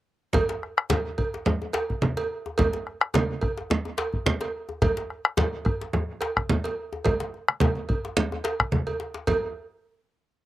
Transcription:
0.33 bombo rim soft
0.33 bombo low medium
0.33 cowbell medium
0.33 low conga medium
0.33 djembe bass medium
0.49 djembe slap medium
0.63 bombo rim soft
0.78 bombo rim medium
0.90 cowbell medium
0.90 djembe slap medium
0.90 djembe tone medium
0.90 high conga medium
0.90 djembe bass medium
0.90 low conga medium
1.18 bombo low medium
1.18 cowbell soft
1.18 djembe slap soft
1.34 djembe slap soft
1.46 bombo rim soft
1.46 low conga medium
1.46 djembe bass medium
1.62 djembe tone medium
1.73 bombo rim soft
1.73 cowbell medium
1.73 djembe slap medium
1.90 bombo low medium
1.90 djembe slap soft
2.02 bombo rim soft
2.02 high conga medium
2.02 low conga medium
2.02 djembe bass medium
2.17 cowbell medium
2.17 djembe slap soft
2.46 djembe tone medium
2.58 bombo rim soft
2.58 bombo low medium
2.58 cowbell medium
2.58 djembe bass medium
2.58 low conga medium
2.73 djembe slap soft
2.87 bombo rim soft
3.01 bombo rim medium
3.14 cowbell medium
3.14 djembe slap medium
3.14 djembe tone medium
3.14 high conga medium
3.14 djembe bass medium
3.14 low conga medium
3.41 bombo rim soft
3.41 bombo low medium
3.41 cowbell soft
3.41 djembe slap soft
3.58 djembe slap soft
3.70 bombo rim soft
3.70 djembe bass medium
3.70 low conga medium
3.85 djembe tone medium
3.98 bombo rim soft
3.98 cowbell soft
3.98 djembe slap medium
4.13 bombo low medium
4.13 djembe slap soft
4.26 bombo rim soft
4.26 high conga medium
4.26 djembe bass medium
4.26 low conga medium
4.41 cowbell soft
4.41 djembe slap medium
4.69 djembe tone soft
4.82 bombo rim soft
4.82 bombo low medium
4.82 cowbell medium
4.82 djembe bass medium
4.82 low conga medium
4.97 djembe slap soft
5.10 bombo rim soft
5.25 bombo rim medium
5.37 cowbell soft
5.37 djembe slap medium
5.37 djembe tone medium
5.37 high conga medium
5.37 djembe bass medium
5.37 low conga medium
5.65 bombo rim soft
5.65 bombo low medium
5.65 cowbell soft
5.65 djembe slap soft
5.81 djembe slap soft
5.93 bombo rim soft
5.93 low conga medium
5.93 djembe bass medium
6.21 bombo rim soft
6.21 cowbell soft
6.21 djembe slap medium
6.37 bombo rim medium
6.37 bombo low medium
6.37 djembe slap soft
6.50 bombo rim soft
6.50 high conga medium
6.50 low conga medium
6.50 djembe bass medium
6.64 cowbell soft
6.64 djembe slap soft
6.93 djembe tone medium
7.05 bombo rim soft
7.05 bombo low medium
7.05 cowbell medium
7.05 djembe bass medium
7.05 low conga medium
7.20 djembe slap medium
7.20 high conga soft
7.34 djembe slap soft
7.48 bombo rim medium
7.48 high conga soft
7.60 cowbell medium
7.60 djembe slap medium
7.60 high conga medium
7.60 djembe tone medium
7.60 low conga medium
7.60 djembe bass medium
7.75 djembe slap soft
7.75 high conga soft
7.89 bombo low loud
7.89 cowbell soft
7.89 djembe slap soft
8.05 djembe slap soft
8.17 low conga medium
8.17 djembe bass medium
8.32 djembe tone medium
8.44 cowbell soft
8.44 djembe slap medium
8.60 bombo rim medium
8.60 bombo low medium
8.60 high conga soft
8.72 high conga medium
8.72 low conga medium
8.72 djembe bass medium
8.87 cowbell soft
8.87 djembe bass soft
9.00 djembe slap soft
9.14 djembe slap medium
9.27 bombo low medium
9.27 cowbell medium
9.27 djembe bass medium
9.27 low conga medium

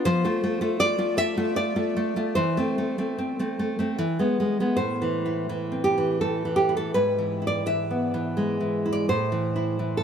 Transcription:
0.05 0.23 F3 medium
0.05 0.76 C5 loud
0.24 0.42 A3 medium
0.24 0.60 F4 medium
0.44 0.60 A3 medium
0.61 0.97 A3 medium
0.61 0.78 F4 medium
0.80 0.97 F4 medium
0.80 1.16 D5 loud
0.98 1.16 A3 medium
0.98 1.36 F4 medium
1.17 1.36 A3 medium
1.17 1.54 E5 loud
1.37 1.75 A3 medium
1.37 1.55 F4 medium
1.56 1.75 F4 medium
1.56 2.33 D5 loud
1.76 1.95 A3 medium
1.76 2.16 F4 medium
1.97 2.15 A3 medium
2.16 2.34 A3 medium
2.16 2.35 F4 medium
2.35 2.56 E3 medium
2.35 3.93 C5 loud
2.57 2.77 A3 medium
2.57 2.97 C4 medium
2.78 2.97 A3 soft
2.98 3.38 A3 medium
2.98 3.17 C4 medium
3.18 3.39 C4 medium
3.39 3.58 A3 soft
3.39 3.79 C4 medium
3.59 3.78 A3 medium
3.79 3.96 A3 medium
3.79 3.97 C4 medium
3.98 4.18 E3 medium
4.19 4.39 G#3 soft
4.19 4.59 B3 medium
4.40 4.59 G#3 medium
4.60 4.76 G#3 medium
4.60 4.76 B3 medium
4.76 6.89 A2 medium
4.76 5.81 C5 medium
5.02 5.48 E3 soft
5.26 6.33 E4 soft
5.49 5.96 E3 medium
5.72 6.21 C4 soft
5.84 6.19 G4 medium
5.98 6.44 E3 soft
6.21 6.93 A3 soft
6.21 6.56 A4 medium
6.45 6.93 E3 soft
6.56 6.75 G4 medium
6.69 6.93 E4 medium
6.77 6.94 A4 medium
6.94 9.03 G#2 medium
6.94 7.45 B4 medium
7.19 7.65 E3 soft
7.42 8.48 E4 soft
7.47 7.64 D5 medium
7.66 8.13 E3 soft
7.66 8.86 E5 medium
7.90 8.96 B3 soft
8.14 8.59 E3 soft
8.37 9.07 G#3 medium
8.60 9.07 E3 soft
8.86 9.08 E4 medium
8.93 9.08 D5 medium
9.09 10.04 A2 medium
9.09 9.93 C5 loud
9.32 9.78 E3 soft
9.56 10.04 E4 medium
9.79 10.04 E3 soft
9.97 10.04 A4 medium

